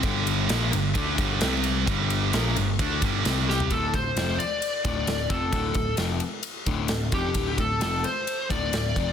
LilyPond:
<<
  \new Staff \with { instrumentName = "Lead electric guitar" } { \time 4/4 \key d \minor \tempo 4 = 131 r1 | r2. r8 g'8 | a'8 c''4 d''4 d''4 a'8~ | a'4 r2 r8 g'8~ |
g'8 a'8 a'8 c''4 d''8 d''4 | }
  \new Staff \with { instrumentName = "Distorted electric guitar" } { \clef bass \time 4/4 \key d \minor <g, d g>4 <bes, f bes>8 <g, d>8 <d a d'>8 <g, d g>8 <c g c'>4 | <g, d g>4 <bes, f bes>8 <g, d>8 <d a d'>8 <g, d g>8 <c g c'>4 | r1 | r1 |
r1 | }
  \new Staff \with { instrumentName = "Overdriven electric guitar" } { \clef bass \time 4/4 \key d \minor <g, d g>4 <bes, f bes>8 <g, d>8 <d a d'>8 <g, d g>8 <c g c'>4 | <g, d g>4 <bes, f bes>8 <g, d>8 <d a d'>8 <g, d g>8 <c g c'>4 | <d, a, d>8 <d, a,>8 <f, c f>8 r4 <d, a, d>8 <d, a,>8 <f, c f>8 | <d, a, d>8 <d, a,>8 <f, c f>8 r4 <d, a, d>8 <d, a,>8 <f, c f>8 |
<d, a, d>8 <d, a,>8 <f, c f>8 r4 <d, a, d>8 <d, a,>8 <f, c f>8 | }
  \new Staff \with { instrumentName = "Picked electric bass" } { \clef bass \time 4/4 \key d \minor g,,4 bes,,8 g,,8 d,8 g,,8 c,4 | g,,4 bes,,8 g,,8 d,8 g,,8 c,4 | d,,8 d,,8 f,,8 r4 d,,8 d,,8 f,,8 | d,,8 d,,8 f,,8 r4 d,,8 d,,8 f,,8 |
d,,8 d,,8 f,,8 r4 d,,8 d,,8 f,,8 | }
  \new DrumStaff \with { instrumentName = "Drums" } \drummode { \time 4/4 <bd cymr>8 cymr8 <cymr sn>8 cymr8 <bd cymr>8 <bd cymr>8 <cymr sn>8 cymr8 | <bd cymr>8 cymr8 <cymr sn>8 cymr8 <bd cymr>8 <bd cymr>8 <cymr sn>8 sn16 tomfh16 | <bd cymr>8 <bd cymr>8 <cymr sn>8 cymr8 cymr8 <bd cymr>8 <cymr sn>8 <bd cymr>8 | <bd cymr>8 <bd cymr>8 <cymr sn>8 cymr8 cymr8 <bd cymr>8 <cymr sn>8 <bd cymr>8 |
<bd cymr>8 <bd cymr>8 <cymr sn>8 cymr8 cymr8 <bd cymr>8 <cymr sn>8 <bd cymr>8 | }
>>